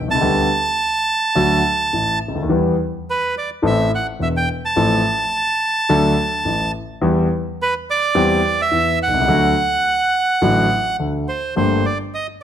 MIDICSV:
0, 0, Header, 1, 3, 480
1, 0, Start_track
1, 0, Tempo, 567108
1, 193, Time_signature, 4, 2, 24, 8
1, 10521, End_track
2, 0, Start_track
2, 0, Title_t, "Bandoneon"
2, 0, Program_c, 0, 23
2, 91, Note_on_c, 0, 81, 107
2, 1853, Note_off_c, 0, 81, 0
2, 2627, Note_on_c, 0, 71, 77
2, 2837, Note_off_c, 0, 71, 0
2, 2861, Note_on_c, 0, 74, 70
2, 2963, Note_off_c, 0, 74, 0
2, 3104, Note_on_c, 0, 76, 93
2, 3314, Note_off_c, 0, 76, 0
2, 3343, Note_on_c, 0, 78, 82
2, 3445, Note_off_c, 0, 78, 0
2, 3576, Note_on_c, 0, 76, 82
2, 3626, Note_off_c, 0, 76, 0
2, 3698, Note_on_c, 0, 79, 87
2, 3801, Note_off_c, 0, 79, 0
2, 3938, Note_on_c, 0, 81, 101
2, 5683, Note_off_c, 0, 81, 0
2, 6453, Note_on_c, 0, 71, 82
2, 6553, Note_off_c, 0, 71, 0
2, 6690, Note_on_c, 0, 74, 96
2, 7290, Note_off_c, 0, 74, 0
2, 7293, Note_on_c, 0, 76, 98
2, 7610, Note_off_c, 0, 76, 0
2, 7641, Note_on_c, 0, 78, 95
2, 9280, Note_off_c, 0, 78, 0
2, 9552, Note_on_c, 0, 72, 69
2, 9773, Note_off_c, 0, 72, 0
2, 9791, Note_on_c, 0, 72, 68
2, 10035, Note_on_c, 0, 74, 66
2, 10037, Note_off_c, 0, 72, 0
2, 10141, Note_off_c, 0, 74, 0
2, 10279, Note_on_c, 0, 75, 76
2, 10385, Note_off_c, 0, 75, 0
2, 10521, End_track
3, 0, Start_track
3, 0, Title_t, "Grand piano"
3, 0, Program_c, 1, 0
3, 8, Note_on_c, 1, 35, 44
3, 68, Note_on_c, 1, 36, 55
3, 70, Note_off_c, 1, 35, 0
3, 127, Note_on_c, 1, 37, 70
3, 130, Note_off_c, 1, 36, 0
3, 180, Note_on_c, 1, 50, 77
3, 184, Note_on_c, 1, 55, 54
3, 186, Note_on_c, 1, 38, 72
3, 187, Note_on_c, 1, 59, 56
3, 187, Note_on_c, 1, 67, 75
3, 190, Note_off_c, 1, 37, 0
3, 390, Note_off_c, 1, 55, 0
3, 391, Note_off_c, 1, 38, 0
3, 391, Note_off_c, 1, 50, 0
3, 392, Note_off_c, 1, 59, 0
3, 392, Note_off_c, 1, 67, 0
3, 1145, Note_on_c, 1, 50, 80
3, 1149, Note_on_c, 1, 38, 84
3, 1149, Note_on_c, 1, 54, 62
3, 1149, Note_on_c, 1, 57, 61
3, 1151, Note_on_c, 1, 66, 68
3, 1354, Note_off_c, 1, 38, 0
3, 1354, Note_off_c, 1, 50, 0
3, 1354, Note_off_c, 1, 54, 0
3, 1354, Note_off_c, 1, 57, 0
3, 1355, Note_off_c, 1, 66, 0
3, 1634, Note_on_c, 1, 33, 50
3, 1636, Note_on_c, 1, 45, 50
3, 1838, Note_off_c, 1, 33, 0
3, 1839, Note_off_c, 1, 45, 0
3, 1933, Note_on_c, 1, 37, 46
3, 1991, Note_on_c, 1, 38, 53
3, 1996, Note_off_c, 1, 37, 0
3, 2053, Note_on_c, 1, 39, 62
3, 2055, Note_off_c, 1, 38, 0
3, 2110, Note_on_c, 1, 52, 75
3, 2113, Note_on_c, 1, 40, 74
3, 2113, Note_on_c, 1, 55, 58
3, 2115, Note_on_c, 1, 59, 56
3, 2115, Note_on_c, 1, 67, 67
3, 2116, Note_off_c, 1, 39, 0
3, 2318, Note_off_c, 1, 40, 0
3, 2318, Note_off_c, 1, 55, 0
3, 2318, Note_off_c, 1, 59, 0
3, 2319, Note_off_c, 1, 52, 0
3, 2319, Note_off_c, 1, 67, 0
3, 3067, Note_on_c, 1, 52, 66
3, 3071, Note_on_c, 1, 33, 83
3, 3071, Note_on_c, 1, 45, 74
3, 3071, Note_on_c, 1, 57, 65
3, 3072, Note_on_c, 1, 60, 62
3, 3075, Note_on_c, 1, 69, 72
3, 3273, Note_off_c, 1, 52, 0
3, 3275, Note_off_c, 1, 33, 0
3, 3275, Note_off_c, 1, 45, 0
3, 3276, Note_off_c, 1, 57, 0
3, 3276, Note_off_c, 1, 60, 0
3, 3277, Note_off_c, 1, 69, 0
3, 3550, Note_on_c, 1, 28, 52
3, 3554, Note_on_c, 1, 40, 52
3, 3754, Note_off_c, 1, 28, 0
3, 3756, Note_off_c, 1, 40, 0
3, 4030, Note_on_c, 1, 45, 72
3, 4032, Note_on_c, 1, 33, 74
3, 4032, Note_on_c, 1, 53, 58
3, 4035, Note_on_c, 1, 57, 58
3, 4035, Note_on_c, 1, 60, 60
3, 4036, Note_on_c, 1, 69, 75
3, 4234, Note_off_c, 1, 33, 0
3, 4234, Note_off_c, 1, 45, 0
3, 4234, Note_off_c, 1, 53, 0
3, 4235, Note_off_c, 1, 57, 0
3, 4235, Note_off_c, 1, 60, 0
3, 4236, Note_off_c, 1, 69, 0
3, 4987, Note_on_c, 1, 54, 72
3, 4990, Note_on_c, 1, 50, 88
3, 4990, Note_on_c, 1, 57, 64
3, 4991, Note_on_c, 1, 69, 78
3, 4993, Note_on_c, 1, 38, 87
3, 4994, Note_on_c, 1, 62, 69
3, 5189, Note_off_c, 1, 54, 0
3, 5190, Note_off_c, 1, 50, 0
3, 5190, Note_off_c, 1, 57, 0
3, 5191, Note_off_c, 1, 69, 0
3, 5192, Note_off_c, 1, 38, 0
3, 5192, Note_off_c, 1, 62, 0
3, 5461, Note_on_c, 1, 33, 58
3, 5464, Note_on_c, 1, 45, 54
3, 5665, Note_off_c, 1, 33, 0
3, 5666, Note_off_c, 1, 45, 0
3, 5936, Note_on_c, 1, 55, 62
3, 5937, Note_on_c, 1, 52, 83
3, 5938, Note_on_c, 1, 59, 65
3, 5939, Note_on_c, 1, 40, 85
3, 5940, Note_on_c, 1, 67, 70
3, 6141, Note_off_c, 1, 55, 0
3, 6142, Note_off_c, 1, 40, 0
3, 6142, Note_off_c, 1, 59, 0
3, 6143, Note_off_c, 1, 67, 0
3, 6144, Note_off_c, 1, 52, 0
3, 6897, Note_on_c, 1, 52, 86
3, 6897, Note_on_c, 1, 55, 66
3, 6898, Note_on_c, 1, 60, 73
3, 6901, Note_on_c, 1, 40, 91
3, 6901, Note_on_c, 1, 67, 87
3, 7099, Note_off_c, 1, 55, 0
3, 7099, Note_off_c, 1, 60, 0
3, 7100, Note_off_c, 1, 52, 0
3, 7101, Note_off_c, 1, 40, 0
3, 7101, Note_off_c, 1, 67, 0
3, 7375, Note_on_c, 1, 52, 56
3, 7376, Note_on_c, 1, 40, 56
3, 7577, Note_off_c, 1, 40, 0
3, 7577, Note_off_c, 1, 52, 0
3, 7680, Note_on_c, 1, 35, 51
3, 7732, Note_on_c, 1, 36, 61
3, 7738, Note_off_c, 1, 35, 0
3, 7794, Note_off_c, 1, 36, 0
3, 7797, Note_on_c, 1, 37, 65
3, 7854, Note_on_c, 1, 57, 64
3, 7855, Note_on_c, 1, 54, 58
3, 7856, Note_on_c, 1, 50, 84
3, 7857, Note_off_c, 1, 37, 0
3, 7857, Note_on_c, 1, 38, 84
3, 7860, Note_on_c, 1, 66, 77
3, 8056, Note_off_c, 1, 57, 0
3, 8057, Note_off_c, 1, 50, 0
3, 8057, Note_off_c, 1, 54, 0
3, 8058, Note_off_c, 1, 38, 0
3, 8060, Note_off_c, 1, 66, 0
3, 8815, Note_on_c, 1, 50, 66
3, 8818, Note_on_c, 1, 54, 65
3, 8818, Note_on_c, 1, 66, 70
3, 8819, Note_on_c, 1, 33, 85
3, 8819, Note_on_c, 1, 45, 81
3, 8819, Note_on_c, 1, 57, 61
3, 9019, Note_off_c, 1, 50, 0
3, 9021, Note_off_c, 1, 33, 0
3, 9021, Note_off_c, 1, 45, 0
3, 9021, Note_off_c, 1, 54, 0
3, 9021, Note_off_c, 1, 57, 0
3, 9021, Note_off_c, 1, 66, 0
3, 9305, Note_on_c, 1, 50, 54
3, 9307, Note_on_c, 1, 38, 55
3, 9508, Note_off_c, 1, 38, 0
3, 9508, Note_off_c, 1, 50, 0
3, 9785, Note_on_c, 1, 50, 57
3, 9790, Note_on_c, 1, 43, 63
3, 9790, Note_on_c, 1, 57, 51
3, 9790, Note_on_c, 1, 67, 62
3, 9793, Note_on_c, 1, 31, 68
3, 9793, Note_on_c, 1, 58, 57
3, 9988, Note_off_c, 1, 50, 0
3, 9990, Note_off_c, 1, 43, 0
3, 9990, Note_off_c, 1, 57, 0
3, 9990, Note_off_c, 1, 67, 0
3, 9992, Note_off_c, 1, 31, 0
3, 9992, Note_off_c, 1, 58, 0
3, 10521, End_track
0, 0, End_of_file